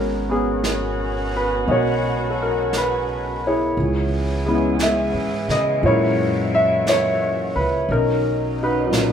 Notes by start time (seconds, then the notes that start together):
Already playing: G#1 B2 G#3 B3 C#4 F#4 A#4
0.29 B3 C#4 G#4
0.64 brush sweep, snare, hi-hat pedal
1.37 B4
1.66 B1 B3 D#5, brush sweep
1.71 F#4 A#4 C#5
2.30 A4
2.42 A#4
2.73 brush sweep, snare, hi-hat pedal
2.77 B4
3.47 E4 G#4 C#5
3.76 C#2 E3 B3 C#4 G#4, brush sweep
4.46 G#3 B3 C#4 E4
4.79 E5, brush sweep, snare, hi-hat pedal
5.14 G#2
5.48 C#3 D#5, snare
5.81 F#2 A#2 G#3 C#4 F#4, brush sweep
5.86 E4 A#4 C#5
6.55 E5
6.87 C#5, brush sweep, snare, hi-hat pedal
7.56 C#2 B4
7.89 B1 D#3 F#3 C#4 D#4 A#4, brush sweep
8.63 D#4 F#4 B4
8.87 A#2 F#3
8.93 C#4, brush sweep, snare, hi-hat pedal
8.97 D#4